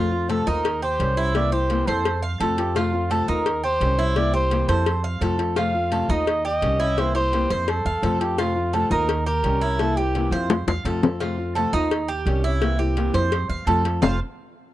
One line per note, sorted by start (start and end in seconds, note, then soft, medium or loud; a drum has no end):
0.00 0.43 F2 medium
0.00 0.11 C3 medium
0.00 0.11 F3 medium
0.00 0.12 A3 medium
0.00 0.12 C4 medium
0.00 0.10 F4 medium
0.00 0.28 F4 medium
0.00 0.32 F4 medium
0.11 0.28 A3 soft
0.11 0.29 C4 soft
0.11 0.28 F4 soft
0.28 0.46 C3 medium
0.28 0.46 F3 medium
0.28 0.46 A3 medium
0.28 0.47 C4 medium
0.28 0.45 F4 medium
0.28 0.46 A4 medium
0.28 0.50 A4 medium
0.28 cowbell medium
0.46 0.96 D#2 medium
0.46 0.65 A3 soft
0.46 0.64 C4 soft
0.46 0.81 D#4 medium
0.46 0.64 F4 soft
0.46 0.82 A#4 loud
0.65 muted nylon-string guitar stroke medium
0.65 cowbell loud
0.82 1.16 G4 medium
0.82 1.32 C5 loud
0.99 1.82 C2 medium
0.99 1.16 D#3 medium
0.99 1.17 G3 medium
0.99 1.17 C#4 medium
0.99 1.15 G4 medium
0.99 cowbell medium
1.17 1.35 G3 soft
1.17 1.35 C#4 soft
1.17 1.51 E4 medium
1.17 1.34 G4 medium
1.34 1.51 C3 medium
1.34 1.52 E3 medium
1.34 1.52 A#3 medium
1.34 1.51 C4 medium
1.34 1.51 E4 medium
1.34 1.55 D5 loud
1.34 cowbell medium
1.52 1.69 A#3 soft
1.52 1.69 C4 soft
1.52 1.69 E4 medium
1.52 1.86 G4 medium
1.52 1.90 C5 loud
1.69 1.87 C3 medium
1.69 1.87 E3 medium
1.69 1.87 A#3 medium
1.69 1.87 C4 medium
1.69 1.86 E4 medium
1.69 cowbell medium
1.87 2.36 F2 medium
1.87 2.05 A#3 soft
1.87 2.05 C4 soft
1.87 2.04 E4 soft
1.87 2.23 A4 loud
1.87 2.22 C5 medium
1.87 cowbell medium
2.05 muted nylon-string guitar stroke medium
2.05 cowbell loud
2.22 2.40 F5 medium
2.40 3.22 F2 medium
2.40 2.57 C3 medium
2.40 2.57 F3 medium
2.40 2.58 A3 medium
2.40 2.58 C4 medium
2.40 2.56 F4 medium
2.40 2.75 A4 medium
2.40 cowbell medium
2.58 2.75 A3 soft
2.58 2.75 C4 soft
2.58 2.75 F4 medium
2.58 2.78 G4 medium
2.58 cowbell medium
2.75 2.92 C3 medium
2.75 2.92 F3 medium
2.75 2.93 A3 medium
2.75 2.93 C4 medium
2.75 3.10 F4 medium
2.75 3.13 F4 medium
2.75 2.91 F4 medium
2.75 cowbell loud
2.93 3.10 A3 soft
2.93 3.10 C4 soft
2.93 3.10 F4 medium
3.10 3.27 C3 medium
3.10 3.28 F3 medium
3.10 3.28 A3 medium
3.10 3.28 C4 medium
3.10 3.27 F4 medium
3.10 3.28 A4 medium
3.10 3.31 A4 loud
3.10 cowbell medium
3.28 3.77 D#2 loud
3.28 3.46 A3 soft
3.28 3.46 C4 soft
3.28 3.62 D#4 medium
3.28 3.45 F4 soft
3.28 3.64 A#4 loud
3.46 muted nylon-string guitar stroke medium
3.46 cowbell loud
3.64 3.98 G4 medium
3.64 4.18 C5 loud
3.80 4.63 C2 medium
3.80 3.97 D#3 medium
3.80 3.98 G3 medium
3.80 3.98 C#4 medium
3.80 3.97 G4 medium
3.80 cowbell medium
3.98 4.16 G3 soft
3.98 4.16 C#4 medium
3.98 4.33 E4 medium
3.98 4.15 G4 medium
4.15 4.33 C3 medium
4.15 4.33 E3 medium
4.15 4.33 A#3 medium
4.15 4.34 C4 medium
4.15 4.32 E4 medium
4.15 4.34 D5 loud
4.15 cowbell medium
4.33 4.51 A#3 soft
4.33 4.51 C4 soft
4.33 4.50 E4 soft
4.33 4.68 G4 medium
4.33 4.71 C5 loud
4.51 4.68 C3 medium
4.51 4.68 E3 medium
4.51 4.68 A#3 medium
4.51 4.69 C4 medium
4.51 4.67 E4 medium
4.51 cowbell medium
4.68 5.18 F2 medium
4.68 4.86 A#3 soft
4.68 4.86 C4 soft
4.68 4.86 E4 medium
4.68 5.04 A4 loud
4.68 5.03 C5 medium
4.68 cowbell medium
4.86 muted nylon-string guitar stroke medium
4.86 cowbell loud
5.04 5.21 F5 medium
5.21 6.04 F2 medium
5.21 5.38 C3 medium
5.21 5.39 F3 medium
5.21 5.39 A3 medium
5.21 5.38 C4 medium
5.21 5.37 F4 medium
5.21 5.56 A4 medium
5.21 cowbell medium
5.38 5.56 A3 soft
5.38 5.56 C4 soft
5.38 5.56 F4 medium
5.38 cowbell medium
5.56 5.73 C3 medium
5.56 5.74 F3 medium
5.56 5.74 A3 medium
5.56 5.74 C4 medium
5.56 5.91 F4 medium
5.56 5.73 F4 medium
5.56 6.13 F5 loud
5.56 cowbell loud
5.74 5.91 A3 soft
5.74 5.92 C4 soft
5.74 5.91 F4 medium
5.91 6.09 C3 medium
5.91 6.09 F3 medium
5.91 6.09 A3 medium
5.91 6.08 C4 medium
5.91 6.07 F4 medium
5.91 6.09 A4 medium
5.91 cowbell medium
6.08 6.58 D#2 loud
6.08 6.27 A3 soft
6.08 6.27 C4 soft
6.08 6.44 D#4 medium
6.08 6.26 F4 soft
6.08 6.45 D#5 loud
6.27 muted nylon-string guitar stroke medium
6.27 cowbell loud
6.45 6.79 G4 medium
6.45 7.01 D#5 loud
6.61 7.45 C2 loud
6.61 6.79 D#3 medium
6.61 6.79 G3 medium
6.61 6.80 C#4 medium
6.61 6.78 G4 medium
6.61 cowbell medium
6.79 6.97 G3 soft
6.79 6.97 C#4 soft
6.79 7.14 E4 medium
6.79 6.97 G4 medium
6.97 7.14 C3 medium
6.97 7.14 E3 medium
6.97 7.15 A#3 medium
6.97 7.14 C4 medium
6.97 7.13 E4 medium
6.97 7.16 C5 loud
6.97 cowbell loud
7.15 7.32 A#3 soft
7.15 7.32 C4 soft
7.15 7.32 E4 medium
7.15 7.49 G4 medium
7.15 7.71 C5 loud
7.32 7.49 C3 medium
7.32 7.50 E3 medium
7.32 7.50 A#3 medium
7.32 7.49 C4 medium
7.32 7.48 E4 medium
7.32 cowbell medium
7.49 7.83 F2 medium
7.49 7.68 A#3 soft
7.49 7.67 C4 soft
7.49 7.67 E4 soft
7.49 7.85 C5 medium
7.49 cowbell medium
7.67 8.23 A4 loud
7.67 muted nylon-string guitar stroke medium
7.67 cowbell loud
7.85 8.02 E2 medium
7.85 8.03 F5 medium
8.02 8.85 F2 medium
8.02 8.20 C3 medium
8.02 8.20 F3 medium
8.02 8.20 A3 medium
8.02 8.20 C4 medium
8.02 8.19 F4 medium
8.02 8.37 A4 medium
8.02 cowbell medium
8.20 8.38 A3 soft
8.20 8.38 C4 soft
8.20 8.37 F4 medium
8.20 8.41 G4 medium
8.20 cowbell medium
8.38 8.55 C3 medium
8.38 8.55 F3 medium
8.38 8.56 A3 medium
8.38 8.55 C4 medium
8.38 8.73 F4 medium
8.38 8.76 F4 loud
8.38 8.54 F4 medium
8.38 cowbell loud
8.55 8.73 A3 soft
8.55 8.73 C4 soft
8.55 8.73 F4 medium
8.73 8.90 C3 medium
8.73 8.91 F3 medium
8.73 8.91 A3 medium
8.73 8.91 C4 medium
8.73 8.90 F4 medium
8.73 8.91 A4 medium
8.73 cowbell medium
8.91 9.40 D#2 loud
8.91 9.08 A3 soft
8.91 9.09 C4 soft
8.91 9.25 D#4 medium
8.91 9.08 F4 medium
8.91 9.24 A#4 loud
9.09 muted nylon-string guitar stroke medium
9.09 cowbell loud
9.26 9.61 G4 medium
9.26 9.81 A#4 loud
9.43 10.26 C2 medium
9.43 9.61 D#3 medium
9.43 9.61 G3 medium
9.43 9.62 C#4 medium
9.43 9.60 G4 medium
9.43 cowbell medium
9.61 9.80 G3 soft
9.61 9.79 C#4 soft
9.61 9.96 E4 medium
9.61 9.79 G4 soft
9.79 9.96 C3 medium
9.79 9.97 E3 medium
9.79 9.97 A#3 medium
9.79 9.97 C4 medium
9.79 9.96 E4 medium
9.79 9.98 A4 medium
9.79 cowbell loud
9.97 10.14 A#3 soft
9.97 10.15 C4 soft
9.97 10.14 E4 soft
9.97 10.34 G4 loud
9.97 10.31 G4 medium
10.14 10.32 C3 medium
10.14 10.32 E3 medium
10.14 10.32 A#3 medium
10.14 10.32 C4 medium
10.14 10.31 E4 medium
10.14 cowbell medium
10.31 10.64 F2 medium
10.31 10.50 A#3 soft
10.31 10.49 C4 soft
10.31 10.49 E4 soft
10.31 10.68 F4 medium
10.31 10.67 C5 medium
10.31 cowbell medium
10.50 muted nylon-string guitar stroke medium
10.50 cowbell loud
10.50 high bongo loud
10.67 10.84 E2 medium
10.67 10.85 F5 medium
10.67 high bongo medium
10.85 11.67 F2 medium
10.85 11.02 C3 medium
10.85 11.02 F3 medium
10.85 11.03 A3 medium
10.85 11.03 C4 medium
10.85 11.01 F4 medium
10.85 11.19 A4 medium
10.85 cowbell medium
11.02 11.21 A3 soft
11.02 11.20 C4 soft
11.02 11.20 F4 soft
11.02 cowbell medium
11.02 low bongo medium
11.20 11.37 C3 medium
11.20 11.38 F3 medium
11.20 11.38 A3 medium
11.20 11.38 C4 medium
11.20 11.55 F4 medium
11.20 11.37 F4 medium
11.20 cowbell loud
11.38 11.56 A3 soft
11.38 11.56 C4 soft
11.38 11.55 F4 medium
11.55 11.73 C3 medium
11.55 11.73 F3 medium
11.55 11.73 A3 medium
11.55 11.74 C4 medium
11.55 11.72 F4 medium
11.55 11.73 A4 medium
11.55 cowbell medium
11.73 12.22 D#2 medium
11.73 11.91 A3 soft
11.73 11.91 C4 soft
11.73 12.07 D#4 medium
11.73 11.90 F4 medium
11.91 muted nylon-string guitar stroke medium
11.91 cowbell loud
12.08 12.43 G4 medium
12.26 13.08 C2 medium
12.26 12.43 D#3 medium
12.26 12.43 G3 medium
12.26 12.44 C#4 medium
12.26 12.42 G4 medium
12.26 cowbell medium
12.44 12.62 G3 soft
12.44 12.61 C#4 medium
12.44 12.78 E4 medium
12.44 12.61 G4 medium
12.61 12.78 C3 medium
12.61 12.79 E3 medium
12.61 12.79 A#3 medium
12.61 12.79 C4 medium
12.61 12.78 E4 medium
12.61 cowbell loud
12.79 12.96 A#3 soft
12.79 12.97 C4 medium
12.79 12.96 E4 medium
12.79 13.13 G4 medium
12.96 13.13 C3 medium
12.96 13.14 E3 medium
12.96 13.14 A#3 medium
12.96 13.13 C4 medium
12.96 13.12 E4 medium
12.96 cowbell medium
13.14 13.47 F2 loud
13.14 13.32 A#3 soft
13.14 13.31 C4 soft
13.14 13.31 E4 medium
13.14 13.49 C5 medium
13.14 cowbell medium
13.31 muted nylon-string guitar stroke medium
13.31 cowbell loud
13.49 13.66 E2 medium
13.49 13.67 F5 medium
13.66 13.98 F2 medium
13.66 13.84 C3 medium
13.66 13.84 F3 medium
13.66 13.84 A3 medium
13.66 13.84 C4 medium
13.66 13.83 F4 medium
13.66 14.01 A4 medium
13.66 cowbell medium
13.84 14.02 A3 soft
13.84 14.02 C4 soft
13.84 14.01 F4 medium
13.84 cowbell medium
14.02 14.18 F1 medium
14.02 14.16 F2 medium
14.02 14.16 C3 medium
14.02 14.17 F3 medium
14.02 14.17 A3 medium
14.02 14.17 C4 medium
14.02 14.19 F4 medium
14.02 14.17 F4 medium
14.02 14.19 C5 medium
14.02 14.19 F5 loud
14.02 low bongo loud